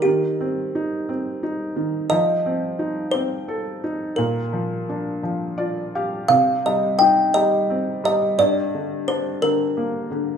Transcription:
<<
  \new Staff \with { instrumentName = "Kalimba" } { \time 6/8 \key c \dorian \tempo 4. = 58 g'2 r4 | ees''4. c''4. | bes'2~ bes'8 r8 | f''8 ees''8 g''8 ees''4 ees''8 |
d''4 c''8 bes'4 r8 | }
  \new Staff \with { instrumentName = "Felt piano" } { \time 6/8 \key c \dorian ees8 c'8 ees'8 c'8 ees'8 ees8 | f8 c'8 ees'8 c'8 a'8 ees'8 | bes,8 f8 d'8 f8 <f' d''>8 <g' f''>8 | c8 g8 ees'8 g8 c'8 g8 |
g,8 d8 d'8 d8 bes8 d8 | }
>>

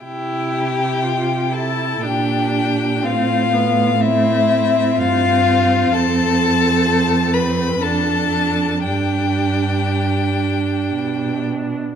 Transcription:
<<
  \new Staff \with { instrumentName = "Violin" } { \time 3/4 \key c \major \tempo 4 = 60 g''4. a''8 g''4 | f''4 e''4 f''4 | a''4. b''8 a''4 | g''2~ g''8 r8 | }
  \new Staff \with { instrumentName = "Violin" } { \time 3/4 \key c \major g'4. a'8 g'4 | f'4 e'4 f'4 | a'4. b'8 a'4 | g'2~ g'8 r8 | }
  \new Staff \with { instrumentName = "Viola" } { \time 3/4 \key c \major e'4 f'8 e'8 d'4 | c'8 b8 c'2~ | c'2 d'4 | d'2. | }
  \new Staff \with { instrumentName = "Cello" } { \clef bass \time 3/4 \key c \major c2 bes,4 | a,2 g,4 | f,2 f,4 | g,2 b,4 | }
>>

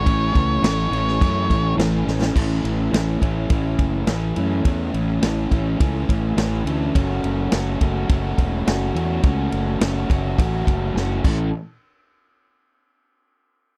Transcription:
<<
  \new Staff \with { instrumentName = "Lead electric guitar" } { \time 4/4 \key a \major \tempo 4 = 105 cis''2. r4 | r1 | r1 | r1 |
r1 | r1 | }
  \new Staff \with { instrumentName = "Overdriven electric guitar" } { \time 4/4 \key a \major <e a cis'>4 <e a cis'>8 <e a cis'>8 <e a cis'>4 <e a cis'>8 <e a cis'>8 | <e a cis'>4 <e a cis'>8 <e a cis'>8 <e a cis'>4 <e a cis'>8 <e a cis'>8 | <e a cis'>4 <e a cis'>8 <e a cis'>8 <e a cis'>4 <e a cis'>8 <e a cis'>8 | <a cis' fis'>4 <a cis' fis'>8 <a cis' fis'>8 <a cis' fis'>4 <a cis' fis'>8 <a cis' fis'>8 |
<a cis' fis'>4 <a cis' fis'>8 <a cis' fis'>8 <a cis' fis'>4 <a cis' fis'>8 <cis' e' a'>8 | r1 | }
  \new Staff \with { instrumentName = "Fingered electric bass" } { \clef bass \time 4/4 \key a \major a,,8 cis,8 a,,8 a,,8 fis,8 a,,8 a,,8 a,,8 | a,,8 a,,8 a,,8 a,,8 a,,8 fis,,8 a,,8 fis,8 | e,8 a,,8 a,,8 a,,8 cis,8 a,,8 a,,8 d,8 | fis,,8 fis,,8 fis,,8 fis,,8 fis,,8 e,,8 fis,,8 e,8 |
cis,8 fis,,8 fis,,8 fis,,8 a,,8 fis,,8 fis,,8 a,,8 | r1 | }
  \new DrumStaff \with { instrumentName = "Drums" } \drummode { \time 4/4 <cymc bd>8 <cymc bd>8 <cymc sn>8 cymc16 sn16 <cymc bd>8 <cymc bd>8 <cymc sn>8 sn16 sn16 | <cymc bd>8 cymr8 <cymr sn>8 <bd cymr>8 <bd cymr>8 <bd cymr>8 <cymr sn>8 cymr8 | <bd cymr>8 cymr8 <cymr sn>8 <bd cymr>8 <bd cymr>8 <bd cymr>8 <cymr sn>8 cymr8 | <bd cymr>8 cymr8 <cymr sn>8 <bd cymr>8 <bd cymr>8 <bd cymr>8 <cymr sn>8 cymr8 |
<bd cymr>8 cymr8 <cymr sn>8 <bd cymr>8 <bd cymr>8 <bd cymr>8 sn8 <cymc bd>8 | r4 r4 r4 r4 | }
>>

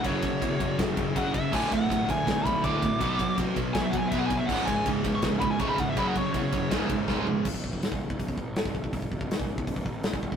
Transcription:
<<
  \new Staff \with { instrumentName = "Lead electric guitar" } { \time 4/4 \key fis \minor \tempo 4 = 162 cis''2 r4 fis''8 e''8 | gis''8 fis''4 gis''4 b''8 d'''4~ | d'''4 r4 gis''16 e''16 fis''16 gis''16 e''16 fis''16 gis''16 e''16 | fis''8 gis''8 r8. cis'''16 r8 b''16 gis''16 cis'''16 b''16 fis''16 e''16 |
b''16 fis''16 cis''8 cis''4 r2 | r1 | r1 | }
  \new Staff \with { instrumentName = "Distorted electric guitar" } { \clef bass \time 4/4 \key fis \minor <fis, cis fis>1 | <d, a, d>1 | <b, fis b>1 | <cis, gis, cis>1 |
<fis, cis fis>2 <cis, gis, cis>2 | r1 | r1 | }
  \new Staff \with { instrumentName = "Distorted electric guitar" } { \clef bass \time 4/4 \key fis \minor <fis, cis fis>8 <fis, cis>8 <fis, cis>8 <fis, cis>8 <fis, cis>8 <fis, cis>8 <fis, cis fis>8 <fis, cis>8 | <d, a, d>8 <d, a,>8 <d, a,>8 <d, a,>8 <d, a,>8 <d, a,>8 <d, a, d>8 <d, a,>8 | <b, fis b>8 <b, fis>8 <b, fis>8 <b, fis>8 <b, fis>8 <b, fis>8 <b, fis b>8 <b, fis>8 | <cis, gis, cis>8 <cis, gis,>8 <cis, gis,>8 <cis, gis,>8 <cis, gis,>8 <cis, gis,>8 <cis, gis, cis>8 <cis, gis,>8 |
<fis, cis fis>8 <fis, cis>8 <fis, cis>8 <fis, cis>8 <cis, gis, cis>8 <cis, gis,>8 <cis, gis, cis>8 <cis, gis,>8 | r1 | r1 | }
  \new Staff \with { instrumentName = "Distorted electric guitar" } { \clef bass \time 4/4 \key fis \minor r1 | <d, a, d>8 <d, a,>8 <d, a,>8 <d, a,>8 <d, a,>8 <d, a,>8 <d, a, d>8 <d, a,>8 | <b, fis b>8 <b, fis>8 <b, fis>8 <b, fis>8 <b, fis>8 <b, fis>8 <b, fis b>8 <b, fis>8 | <cis, gis, cis>8 <cis, gis,>8 <cis, gis,>8 <cis, gis,>8 <cis, gis,>8 <cis, gis,>8 <cis, gis, cis>8 <cis, gis,>8 |
<fis, cis fis>8 <fis, cis>8 <fis, cis>8 <fis, cis>8 <cis, gis, cis>8 <cis, gis,>8 <cis, gis, cis>8 <cis, gis,>8 | r1 | r1 | }
  \new Staff \with { instrumentName = "Picked electric bass" } { \clef bass \time 4/4 \key fis \minor fis,,4 e,8 fis,,8 fis,,8 fis,,8 fis,,4 | d,,8 d,,8 d,,8 d,,8 d,,8 d,,8 d,,8 d,,8 | b,,4 a,,8 b,,8 b,,8 b,,8 b,,4 | cis,,8 cis,,8 cis,,8 cis,,8 cis,,8 cis,,8 cis,,8 cis,,8 |
fis,,4 e,8 fis,,8 cis,,8 cis,,8 cis,,4 | cis,,16 cis,,16 cis,,16 cis,,16 d,,16 cis,,8 cis,,16 cis,,16 cis,,16 a,,8. gis,,16 cis,,16 cis,,16 | cis,,16 cis,,16 cis,,16 cis,,16 d,,16 cis,,8 cis,,16 cis,,16 cis,,16 a,,8. gis,,16 cis,,16 cis,,16 | }
  \new DrumStaff \with { instrumentName = "Drums" } \drummode { \time 4/4 <bd cymr>8 <bd cymr>8 <bd cymr>8 <bd cymr>8 <bd cymr sn>8 <bd cymr>8 <bd cymr>8 <bd cymr>8 | <cymc bd>8 <bd cymr>8 <bd cymr>8 <bd cymr>8 <bd cymr sn>8 <bd cymr>8 <bd cymr>8 <bd cymr>8 | <bd cymr>8 <bd cymr>8 <bd cymr>8 <bd cymr>8 <bd cymr sn>8 <bd cymr>8 <bd cymr>8 <bd cymr>8 | <cymc bd>8 <bd cymr>8 <bd cymr>8 <bd cymr>8 <bd cymr sn>8 <bd cymr>8 <bd cymr>8 <bd cymr>8 |
<bd cymr>8 <bd cymr>8 <bd cymr>8 <bd cymr>8 <bd cymr sn>8 <bd cymr>8 <bd sn>8 tomfh8 | <cymc bd>16 bd16 bd16 bd16 <hho sn>16 bd8 bd16 <hho bd>16 bd16 bd8 <hho sn>16 bd16 bd16 bd16 | <hho bd>16 bd16 bd16 bd16 <hho sn>16 bd8 bd16 <hho bd>16 bd16 bd8 <hho sn>16 bd16 bd16 bd16 | }
>>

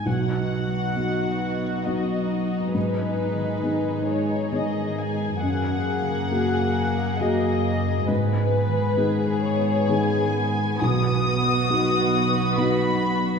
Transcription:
<<
  \new Staff \with { instrumentName = "Violin section" } { \time 3/4 \key b \major \tempo 4 = 67 fis''2 dis''4 | b'4. cis''8 dis''8 gis''8 | fis''2 dis''4 | b'4. cis''8 gis''4 |
dis'''2 b''4 | }
  \new Staff \with { instrumentName = "Violin section" } { \time 3/4 \key b \major << { fis'2. | gis'2.~ | gis'2. | gis'2. |
fis'2. | } \\ { dis'2.~ | dis'2. | ais2. | b2.~ |
b2. | } >> }
  \new Staff \with { instrumentName = "Felt piano" } { \time 3/4 \key b \major b,,4 <b dis' fis'>4 <b dis' fis'>4 | gis,4 <b dis' gis'>4 <b dis' gis'>4 | fis,4 <ais fis' gis'>4 <ais fis' gis'>4 | gis,4 <b dis' gis'>4 <b dis' gis'>4 |
b,,4 <b dis' fis'>4 <b dis' fis'>4 | }
  \new Staff \with { instrumentName = "Harp" } { \time 3/4 \key b \major \tuplet 3/2 { b,8 b8 fis8 b8 fis'8 b8 fis8 b8 fis'8 } | \tuplet 3/2 { gis,8 b8 dis8 b8 gis'8 b8 dis8 b8 gis'8 } | \tuplet 3/2 { fis,8 ais8 cis8 ais8 gis'8 ais8 cis8 ais8 gis'8 } | \tuplet 3/2 { gis,8 b8 dis8 b8 gis'8 b8 dis8 b8 gis'8 } |
\tuplet 3/2 { b,8 b8 fis8 b8 fis'8 b8 fis8 b8 fis'8 } | }
  \new Staff \with { instrumentName = "Cello section" } { \clef bass \time 3/4 \key b \major b,2. | gis,2. | fis,2. | gis,2. |
b,2. | }
>>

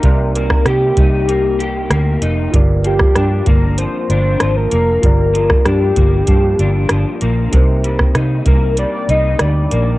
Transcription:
<<
  \new Staff \with { instrumentName = "Soft synth lead" } { \time 4/4 \key c \minor \tempo 4 = 96 bes'8 bes'8 g'2~ g'8 r8 | r8 g'4 bes'8 c''8 c''8. bes'8. | bes'4 g'2~ g'8 r8 | r4. bes'8 d''8 ees''8 d''4 | }
  \new Staff \with { instrumentName = "Reed electric piano" } { \time 4/4 \key c \minor <ees' g' bes' d''>1 | <f' g' bes' d''>1 | <f' g' bes' d''>1 | <ees' g' bes' c''>1 | }
  \new Staff \with { instrumentName = "Clean electric guitar" } { \time 4/4 \key c \minor <c bes ees' g'>8 bes8 g'8 ees'8 bes8 g'8 bes8 ees'8 | g,8 f8 d'8 bes8 f8 d'8 f8 bes8 | g,8 f8 d'8 bes8 f8 d'8 f8 bes8 | c8 g8 ees'8 bes8 g8 ees'8 g8 bes8 | }
  \new Staff \with { instrumentName = "Fingered electric bass" } { \clef bass \time 4/4 \key c \minor c,4 c8 c,4. d,8 f,,8 | g,,4 g,8 g,,8. r16 g,,8 aes,,8 f,,8 | g,,4 g,8 g,,8 g,8 g,,8 g,,16 r16 bes,,8 | c,4 c8 c,8. r16 c,8 d,8 bes,,8 | }
  \new DrumStaff \with { instrumentName = "Drums" } \drummode { \time 4/4 <hh bd>8 hh16 <bd ss>16 <hh ss>8 <hh bd>8 hh8 hh8 <hh ss>8 hh8 | <hh bd>8 hh16 <bd ss>16 <hh ss>8 <hh bd>8 hh8 hh8 <hh ss>8 hh8 | <hh bd>8 hh16 <bd ss>16 <hh ss>8 <hh bd>8 <hh bd>8 hh8 <hh ss>8 hh8 | <hh bd>8 hh16 <bd ss>16 <hh ss>8 <hh bd>8 hh8 hh8 <hh ss>8 hh8 | }
>>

